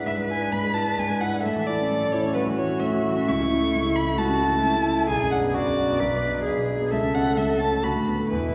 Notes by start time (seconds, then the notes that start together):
Already playing: G#2 G#3 D4 E4 B4
0.06 G#2 E5
0.18 G#3
0.29 E4 G#5
0.41 D4
0.52 G#2 B5
0.63 G#3
0.74 E4 A5
0.87 D4
0.98 G#2 G#5
1.09 G#3
1.21 E4 F#5
1.34 D4
1.43 A2 A4 E5
1.56 E3
1.66 E4 D5
1.81 C#4
1.92 A2
2.04 E3
2.12 E4 C#5
2.25 C#4
2.35 A2 F#4 B4
2.47 E3
2.58 E4 C#5
2.69 C#4
2.80 A2 E5
2.92 E3
3.03 E4
3.17 C#4
3.27 C#2 E4 C#6
3.40 C#3
3.52 E4
3.62 A3
3.75 C#2
3.86 C#3
3.96 E4 B5
4.08 A3
4.17 C#2 F#4 A5
4.29 C#3
4.41 E4
4.52 A3
4.63 C#2 E4
4.75 C#3
4.86 E4
4.98 A3
5.07 B1 G#4 G#5
5.22 F#2
5.32 D4 F#5
5.42 B3
5.54 B1 F#4 D5
5.67 F#2
5.78 D4
5.89 B3
6.00 B1 B4
6.13 B2
6.24 D4
6.35 B3
6.45 B1 G#4
6.57 B2
6.70 D4
6.81 B3
6.90 C#2 A4 E5
7.04 C#3
7.15 C#4 F#5
7.26 A3
7.37 C#2 E5
7.49 C#3
7.61 C#4 A5
7.72 A3
7.83 D2 F#4 B5
7.95 A2
8.08 B3
8.19 A3
8.30 E2 E4 B4
8.42 B2